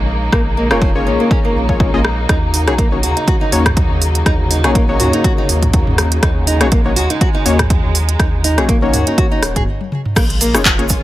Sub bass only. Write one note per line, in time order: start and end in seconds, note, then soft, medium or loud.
0.00 0.29 A#1 medium
0.33 0.72 A#1 medium
0.71 1.08 F1 loud
1.06 1.17 A#1 medium
1.55 1.89 A#1 medium
1.94 2.26 A#1 loud
2.29 2.69 D#2 loud
2.67 3.05 A#1 loud
3.03 3.14 D#2 medium
3.52 3.86 D#2 loud
3.90 4.22 D#2 medium
4.26 4.66 D#2 loud
4.64 5.02 A#1 loud
5.00 5.11 D#2 medium
5.49 5.83 D#2 loud
5.87 6.19 D#2 medium
6.23 6.62 D#2 loud
6.61 6.98 A#1 loud
6.96 7.07 D#2 medium
7.46 7.80 D#2 loud
7.84 8.16 D#2 medium
8.20 8.59 D#2 loud
8.58 8.95 A#1 medium
8.93 9.04 D#2 medium
9.43 9.67 D#1 medium
10.16 10.56 A#1 loud
10.54 10.92 F1 loud
10.90 11.01 A#1 medium